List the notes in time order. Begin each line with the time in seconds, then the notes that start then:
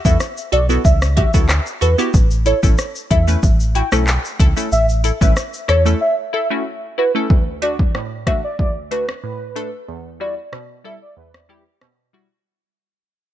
0.05 E2 B3 E4 F#4 A4 E5, kick, shaker
0.20 cross-stick, shaker
0.37 shaker
0.52 B1 F#4 A4 D5, closed hi-hat, shaker
0.69 B3 E4 F#4 A4, shaker
0.85 C#2 E5, kick, shaker
1.02 cross-stick, shaker
1.17 F#4 G4 E5, kick, closed hi-hat, shaker
1.34 D2 B3 E4 F#4 A4, kick, shaker
1.49 cross-stick, clap, shaker
1.66 shaker
1.81 E2 F#4 A4 B4, closed hi-hat, shaker
1.98 B3 E4 F#4 G4, shaker
2.14 A1, kick, shaker
2.31 shaker
2.46 E4 A4 C#5, closed hi-hat, shaker
2.63 A1 A3 C#4 E4 A4, kick, shaker
2.78 cross-stick, shaker
2.95 shaker
3.11 E2 E4 A4 E5, kick, closed hi-hat, shaker
3.27 A3 C#4 E4 B4, shaker
3.43 A1, kick, shaker
3.60 shaker
3.75 E4 F#4 G5, closed hi-hat, shaker
3.92 B1 A3 C#4 E4 A4, cross-stick, shaker
4.07 clap, shaker
4.25 shaker
4.39 C#2 E4 A4, kick, closed hi-hat, shaker
4.56 A3 C#4 E4 A4, shaker
4.72 A1 E5, shaker
4.89 shaker
5.04 E4 A4, closed hi-hat, shaker
5.21 A1 A3 C#4 E4 B4 E5, kick, shaker
5.36 cross-stick, shaker
5.54 shaker
5.68 E2 E4 A4 C#5, cross-stick, closed hi-hat, shaker
5.85 A3 C#4 E4 A4, shaker
6.01 E5
6.33 E4 A4 E5
6.50 A3 C#4 E4 F#4
6.98 E4 F#4 B4
7.15 A3 C#4 E4 A4
7.30 D2, kick
7.62 A3 D4 F#4 D5, closed hi-hat
7.79 kick
7.95 A2, cross-stick
8.27 A3 D4 F#4 E5, kick, cross-stick, closed hi-hat
8.44 D5
8.59 D2 D5, kick
8.91 A3 D4 F#4 B4, closed hi-hat
9.09 cross-stick
9.24 A2 B4
9.56 A3 D4 A4, closed hi-hat
9.88 E2
10.20 G3 E4 F#4 D5
10.52 B2, cross-stick
10.84 G3 E4 A4 E5
11.02 D5
11.17 E2 B4
11.34 cross-stick
11.49 G3 E4 G4
11.81 B2, cross-stick
12.13 G3 E4 F#4